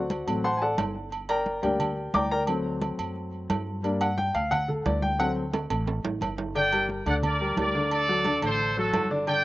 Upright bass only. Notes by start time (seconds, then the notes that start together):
Already playing: D2
0.28 A1
0.78 G1
1.63 D2
2.14 D2
2.99 F#2
3.50 G2
4.35 D2
4.86 D2
5.70 A1
6.04 A1
6.21 G1
7.06 D2
7.57 D2
8.42 A1
8.93 G1